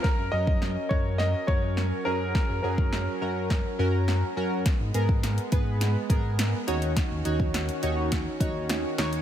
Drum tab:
HH |----------------|----------------|x-x-xxx-x-x-x-xx|x-x-xxx-x-x-x-xx|
SD |o---o---o---o---|o---o---o---o---|o---o---o---o---|o---o---o---o-o-|
BD |o--o--o---o-----|o--o----o-------|o--o--o---o-----|o--o----o-o-----|